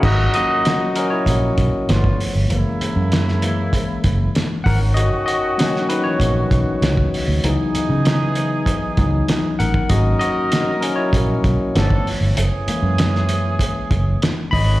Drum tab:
CC |x---------------|----------------|----------------|----------------|
HH |--x-x-x-x-x-x-o-|x-x-x-x-x-x-x-o-|x-x-x-x-x-x-x-o-|x-x-x-x-x-x-x-x-|
SD |----o-------o---|----oo------o---|----oo------o---|----o-------o---|
BD |o-------o-o--o--|--------o-o---o-|--------o-o--o--|--------o-o----o|

CC |----------------|----------------|
HH |x-x-x-x-x-x-x-o-|x-x-x-x-x-x-x-o-|
SD |----o-------o---|----oo------o---|
BD |o-------o-o--o--|--------o-o---o-|